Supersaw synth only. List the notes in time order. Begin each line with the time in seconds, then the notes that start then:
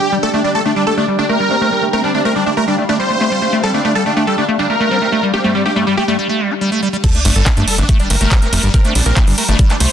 Already playing: G4
0.23 A4
0.34 D4
0.44 D4
0.55 A4
0.65 D4
0.76 D4
0.87 A4
0.97 D4
1.19 D4
1.29 A#4
1.93 A#4
2.04 D4
2.14 D4
2.25 A#4
2.36 D4
2.46 D4
2.57 A#4
2.68 D4
2.89 D4
2.99 C5
3.63 A4
3.74 D4
3.85 D4
3.95 A4
4.06 D4
4.16 D4
4.27 A4
4.38 D4
4.59 D4
4.70 A#4
5.34 G4
5.44 G3
5.55 G3
5.65 G4
5.76 G3
5.87 G3
5.97 G4
6.08 G3
7.04 A4
7.14 D4
7.25 D4
7.36 A4
7.46 D4
7.57 D4
7.68 A4
7.78 D4
8.00 D4
8.10 A#4
8.74 A#4
8.85 D4
8.95 D4
9.06 A#4
9.17 D4
9.27 D4
9.38 A#4
9.49 D4
9.70 D4
9.80 C5